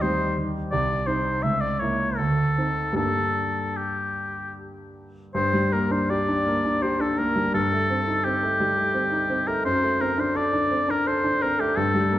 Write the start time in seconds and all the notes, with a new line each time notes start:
Already playing: D#2 D#3 G3 C4 D#4
0.02 G3 C4 D#4 C5
0.37 D#3
0.71 C2 D5
1.07 C4 D#4 C5
1.43 C#2 E5
1.61 D5
1.79 A#3 E4 C#5
2.17 D2 A4
2.58 C4 D#4
2.92 G2 G3 A#3 D4
2.97 A4
3.77 G4
5.35 G2 C5
5.53 G3
5.72 A#3 A#4
5.91 D4 C5
6.10 G4 D5
6.29 D4
6.46 A#3
6.65 D4
6.82 G4 C5
7.00 D4 A4
7.18 A#3 A#4
7.36 G3
7.54 G2 A4
7.72 A3
7.90 C4
8.07 D#4
8.25 C4 G4
8.43 A3
8.60 G3
8.78 A3
8.94 C4
9.12 D#4
9.30 C4
9.47 A3 A#4
9.65 F#2 C5
9.84 A3
10.01 C4 A#4
10.18 D4 C5
10.35 A4 D5
10.53 D4
10.71 C4
10.88 D4 A#4
11.07 A4 C5
11.24 D4
11.42 C4 A#4
11.59 A3 G4
11.77 G2 A4
11.94 G3
12.12 A#3